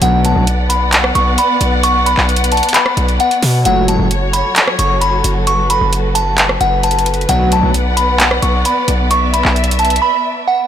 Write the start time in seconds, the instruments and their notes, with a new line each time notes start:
0.02 808-style bass B1, analog polysynth D2 B2 F#3, string section B3 B4 D5 F#5, synth bell F#5, closed hi-hat
0.25 synth bell A5, closed hi-hat
0.36 808-style bass B1
0.47 closed hi-hat
0.70 synth bell B5, closed hi-hat
0.93 clap, closed hi-hat
1.04 cross-stick
1.15 808-style bass B1, synth bell C#6, closed hi-hat
1.38 synth bell B5, closed hi-hat
1.61 808-style bass B1, closed hi-hat
1.83 synth bell C#6, closed hi-hat
2.06 synth bell B5, closed hi-hat
2.17 808-style bass B1, clap
2.29 closed hi-hat
2.36 closed hi-hat
2.44 closed hi-hat
2.52 synth bell A5, closed hi-hat
2.57 closed hi-hat
2.63 closed hi-hat
2.69 closed hi-hat
2.74 synth bell B5, clap, closed hi-hat
2.86 cross-stick
2.97 808-style bass B1, closed hi-hat
3.09 closed hi-hat
3.20 synth bell F#5, closed hi-hat
3.31 closed hi-hat
3.43 808-style bass B2, open hi-hat
3.65 808-style bass F#1, analog polysynth C#2 A2 F#3, string section F#3 F#4 A4 C#5, synth bell F#5, closed hi-hat
3.88 synth bell A5, closed hi-hat
3.99 808-style bass F#1
4.11 closed hi-hat
4.33 synth bell B5, closed hi-hat
4.56 clap, closed hi-hat
4.68 cross-stick
4.79 808-style bass F#1, synth bell C#6, closed hi-hat
5.01 synth bell B5, closed hi-hat
5.24 808-style bass F#1, closed hi-hat
5.47 string section B4, synth bell C#6, closed hi-hat
5.70 synth bell B5, closed hi-hat
5.81 808-style bass F#1
5.93 closed hi-hat
6.15 synth bell A5, closed hi-hat
6.38 clap, closed hi-hat
6.49 cross-stick
6.61 808-style bass F#1, synth bell F#5, closed hi-hat
6.83 synth bell A5, closed hi-hat
6.91 closed hi-hat
6.99 closed hi-hat
7.06 closed hi-hat, open hi-hat
7.14 closed hi-hat
7.21 closed hi-hat
7.29 808-style bass B1, analog polysynth D2 B2 F#3, string section B3 D5 F#5, synth bell F#5, closed hi-hat
7.52 synth bell A5, closed hi-hat
7.63 808-style bass B1
7.74 closed hi-hat
7.97 synth bell B5, closed hi-hat
8.20 clap, closed hi-hat
8.31 cross-stick
8.42 808-style bass B1, synth bell C#6, closed hi-hat
8.65 synth bell B5, closed hi-hat
8.88 808-style bass B1, closed hi-hat
9.11 string section E5, synth bell C#6, closed hi-hat
9.34 synth bell B5, closed hi-hat
9.45 808-style bass B1, clap
9.56 closed hi-hat
9.64 closed hi-hat
9.71 closed hi-hat
9.79 synth bell A5, closed hi-hat
9.85 closed hi-hat
9.90 closed hi-hat
9.96 closed hi-hat
10.02 synth bell B5
10.48 synth bell F#5